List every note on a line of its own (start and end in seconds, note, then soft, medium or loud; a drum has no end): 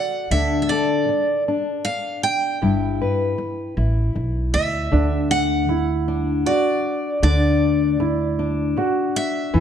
0.00 0.27 F#4 medium
0.00 0.27 A4 medium
0.00 0.31 F#5 medium
0.31 0.68 D2 medium
0.31 1.08 D3 medium
0.31 1.48 D4 medium
0.31 0.61 E5 medium
0.62 0.69 E5 medium
0.69 2.58 A4 medium
0.69 1.42 D5 medium
1.09 muted steel-string acoustic guitar stroke medium
1.48 2.62 D4 medium
1.85 2.23 F5 medium
1.85 muted steel-string acoustic guitar stroke medium
2.23 4.12 G5 medium
2.62 2.99 G1 medium
2.62 3.37 G2 medium
2.62 3.76 E4 medium
3.01 4.89 B4 medium
3.38 muted steel-string acoustic guitar stroke medium
3.77 4.12 A1 medium
3.77 4.88 E4 soft
4.15 4.51 B1 medium
4.15 muted steel-string acoustic guitar stroke medium
4.54 4.89 D2 medium
4.54 5.27 E5 medium
4.92 6.43 D2 medium
4.92 5.69 D3 medium
4.92 5.68 D4 medium
5.31 6.46 F#5 loud
5.68 6.45 E4 medium
5.68 muted steel-string acoustic guitar stroke medium
6.08 7.19 D4 medium
6.46 7.22 F#4 medium
6.46 7.22 D5 medium
6.46 muted steel-string acoustic guitar stroke medium
7.22 8.73 D2 medium
7.22 7.99 D3 medium
7.22 7.99 D4 medium
7.22 8.73 D5 medium
8.00 8.76 E4 medium
8.00 muted steel-string acoustic guitar stroke medium
8.39 9.50 D4 medium
8.77 9.53 F#4 medium
8.77 muted steel-string acoustic guitar stroke medium
9.16 9.60 E5 medium
9.54 9.60 E2 medium
9.54 9.60 E3 medium
9.54 9.60 E4 medium